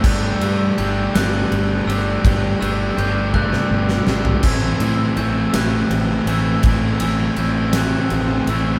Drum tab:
CC |x-----------|------------|x-----------|------------|
RD |--x-x-x-x-x-|x-x-x-------|--x-x-x-x-x-|x-x-x-x-x-x-|
SD |------o-----|-------o-oo-|------o-----|------o-----|
T1 |------------|------o-----|------------|------------|
FT |------------|-----------o|------------|------------|
BD |o-----------|o-----o-----|o-----------|o-----------|